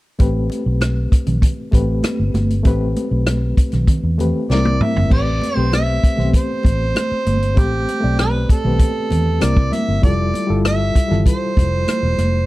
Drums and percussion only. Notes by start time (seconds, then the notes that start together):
0.19 kick, closed hi-hat, muted conga
0.50 closed hi-hat, muted conga
0.81 cross-stick, closed hi-hat, high conga
1.12 kick, closed hi-hat
1.27 closed hi-hat, low conga
1.42 kick, closed hi-hat, muted conga
1.72 kick, closed hi-hat, muted conga
2.03 cross-stick, closed hi-hat, high conga
2.34 cross-stick, closed hi-hat, high conga
2.50 closed hi-hat
2.65 kick, closed hi-hat, muted conga
2.96 closed hi-hat, muted conga
3.27 cross-stick, closed hi-hat, high conga
3.57 kick, closed hi-hat
3.72 cross-stick, closed hi-hat, low conga
3.87 kick, closed hi-hat, muted conga, low conga
4.19 closed hi-hat, muted conga, low conga
4.50 snare, high conga
4.65 high tom
4.81 mid tom, high conga
4.96 floor tom
5.10 kick, crash, muted conga
5.41 closed hi-hat, muted conga
5.73 cross-stick, closed hi-hat, high conga
6.04 kick, closed hi-hat
6.18 cross-stick, low conga
6.34 kick, closed hi-hat
6.63 kick, closed hi-hat, muted conga
6.95 cross-stick, closed hi-hat, high conga
7.26 closed hi-hat, high conga
7.43 closed hi-hat
7.57 kick, closed hi-hat, muted conga
7.88 closed hi-hat, muted conga
8.19 cross-stick, closed hi-hat, high conga
8.49 kick, closed hi-hat
8.65 low conga
8.79 kick, closed hi-hat, muted conga
9.11 closed hi-hat, muted conga, low conga
9.41 cross-stick, closed hi-hat, high conga
9.57 kick
9.73 cross-stick, closed hi-hat, high conga
10.03 kick, closed hi-hat, muted conga
10.34 closed hi-hat, muted conga
10.65 cross-stick, closed hi-hat, high conga
10.95 kick, closed hi-hat
11.11 cross-stick, low conga
11.26 kick, closed hi-hat
11.57 kick, closed hi-hat, muted conga
11.88 cross-stick, closed hi-hat, high conga
12.18 cross-stick, closed hi-hat, high conga